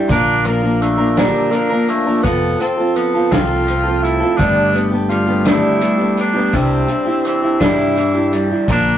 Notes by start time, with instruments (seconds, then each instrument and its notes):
Already playing: steel-string acoustic guitar E4
0.08 picked electric bass A#1, clean electric guitar A#2, steel-string acoustic guitar A#2 D3 F3 A#3 D4 A#4, tenor saxophone D4, kick, closed hi-hat
0.45 steel-string acoustic guitar F3 A#3 D4 A#4, tenor saxophone A#3, closed hi-hat
0.62 steel-string acoustic guitar F3 A#3 D4 A#4
0.81 clean electric guitar D3, tenor saxophone A3, closed hi-hat
0.97 steel-string acoustic guitar F3 A#3 D4 A#4
1.17 steel-string acoustic guitar A#2 D3 F3 A#3 D4 A#4, tenor saxophone G3, clean electric guitar D4, snare, closed hi-hat
1.51 clean electric guitar D3, steel-string acoustic guitar F3 A#3 D4, tenor saxophone A#3, closed hi-hat
1.55 steel-string acoustic guitar A#4
1.70 steel-string acoustic guitar F3 A#3 D4 A#4
1.88 tenor saxophone A3, clean electric guitar A#3, closed hi-hat
2.06 steel-string acoustic guitar F3 A#3 D4 A#4
2.22 picked electric bass F1, clean electric guitar F2, steel-string acoustic guitar F3 F4 A4, tenor saxophone B3, kick, closed hi-hat
2.59 steel-string acoustic guitar F3 C4 F4 A4, tenor saxophone C4, closed hi-hat
2.77 steel-string acoustic guitar C4 F4 A4
2.96 clean electric guitar F3, tenor saxophone B3, closed hi-hat
3.14 steel-string acoustic guitar C4 F4 A4
3.31 picked electric bass C2, steel-string acoustic guitar F3 C4 F4 A4, clean electric guitar C4, tenor saxophone F4, kick, snare, closed hi-hat
3.67 clean electric guitar F3, steel-string acoustic guitar F3 C4 F4 A4, closed hi-hat
3.84 steel-string acoustic guitar C4 F4 A4
4.03 clean electric guitar A3, tenor saxophone E4, closed hi-hat
4.20 steel-string acoustic guitar C4 F4 A4
4.37 picked electric bass G1, steel-string acoustic guitar G2 D3 A3 B3 D4 G4, clean electric guitar G3, tenor saxophone D4, kick, closed hi-hat
4.72 steel-string acoustic guitar A3 B3 D4 G4, closed hi-hat
4.92 steel-string acoustic guitar A3 B3 D4 G4
5.09 clean electric guitar G3, tenor saxophone F4, closed hi-hat
5.27 steel-string acoustic guitar A3 B3 D4 G4
5.44 steel-string acoustic guitar G2 D3 A3 B3 D4 G4, clean electric guitar D4, tenor saxophone E4, snare, closed hi-hat
5.81 clean electric guitar G3, steel-string acoustic guitar A3 B3 D4 G4, closed hi-hat
5.98 steel-string acoustic guitar A3 B3 D4 G4
6.17 clean electric guitar B3, tenor saxophone D4, closed hi-hat
6.34 steel-string acoustic guitar A3 B3 D4 G4
6.52 picked electric bass C2, steel-string acoustic guitar C3 G3 D4 E4 G4, clean electric guitar C3, tenor saxophone C4, kick, closed hi-hat
6.88 steel-string acoustic guitar G3 D4 E4 G4, closed hi-hat
7.05 steel-string acoustic guitar D4 E4 G4
7.25 clean electric guitar E3, tenor saxophone C4, closed hi-hat
7.42 steel-string acoustic guitar D4 E4 G4
7.60 picked electric bass G2, steel-string acoustic guitar C3 G3 D4 E4 G4, clean electric guitar D4, tenor saxophone E4, kick, snare, closed hi-hat
7.96 clean electric guitar E3, steel-string acoustic guitar G3 D4 E4 G4, closed hi-hat
8.15 steel-string acoustic guitar D4 E4 G4
8.33 clean electric guitar G3, closed hi-hat
8.50 steel-string acoustic guitar D4 E4 G4
8.68 picked electric bass A#1, steel-string acoustic guitar A#2 D3 F3 A#3 D4 A#4, clean electric guitar A#2, tenor saxophone D4, kick, closed hi-hat